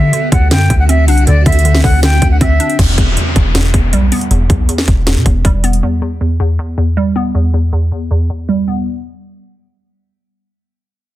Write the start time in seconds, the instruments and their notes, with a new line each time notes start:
Already playing: synth pluck D3, 808-style bass D3, ambient pad D3 C4 F#4, flute E5
0.13 synth pluck D3, closed hi-hat
0.32 808-style bass D2, synth pluck D3, flute F#5, kick, closed hi-hat
0.51 808-style bass F#2, synth pluck D3, flute G5, snare, closed hi-hat
0.70 808-style bass D2, synth pluck D3, kick, closed hi-hat
0.79 flute F#5
0.89 synth pluck C4, flute E5, closed hi-hat
1.08 808-style bass C2, synth pluck D4, flute F#5, closed hi-hat, open hi-hat
1.18 closed hi-hat
1.27 808-style bass D2, synth pluck D3, flute D5, closed hi-hat
1.46 808-style bass D2, synth pluck D3, flute E5, kick, closed hi-hat
1.52 closed hi-hat
1.59 closed hi-hat
1.65 synth pluck D3, closed hi-hat
1.75 snare
1.84 808-style bass D2, synth pluck D3, flute F#5, kick, open hi-hat
2.03 synth pluck D3, flute G5, snare, closed hi-hat
2.22 808-style bass D2, synth pluck D3, kick, closed hi-hat
2.31 flute F#5
2.41 808-style bass D2, synth pluck C4, flute E5, kick, closed hi-hat
2.60 synth pluck D4, closed hi-hat
2.70 closed hi-hat
2.79 808-style bass E1, synth pluck E2, kick, closed hi-hat, crash, downlifter
2.98 808-style bass E1, synth pluck E2, kick, closed hi-hat
3.17 synth pluck E2, closed hi-hat
3.36 808-style bass E1, synth pluck E2, kick, closed hi-hat
3.55 synth pluck E2, snare, closed hi-hat
3.74 808-style bass E1, synth pluck E2, kick, closed hi-hat
3.93 808-style bass B1, synth pluck G3, closed hi-hat
4.12 synth pluck B3, closed hi-hat, open hi-hat
4.21 closed hi-hat
4.31 808-style bass E1, synth pluck E2, closed hi-hat
4.50 808-style bass B1, synth pluck E2, kick, closed hi-hat
4.69 synth pluck E2, closed hi-hat
4.78 snare
4.88 808-style bass E1, synth pluck E2, kick, closed hi-hat
5.07 synth pluck E2, snare, closed hi-hat
5.16 808-style bass B2
5.26 808-style bass E1, synth pluck E2, kick, closed hi-hat
5.45 808-style bass E1, synth pluck G3, kick, closed hi-hat
5.64 synth pluck B3, closed hi-hat
5.73 closed hi-hat
5.83 synth pluck E2
6.02 synth pluck E2
6.21 synth pluck E2
6.40 synth pluck E2
6.59 synth pluck E2
6.78 synth pluck E2
6.97 synth pluck G3
7.16 synth pluck B3
7.35 synth pluck E2
7.54 synth pluck E2
7.73 synth pluck E2
7.92 synth pluck E2
8.11 synth pluck E2
8.30 synth pluck E2
8.49 synth pluck G3
8.68 synth pluck B3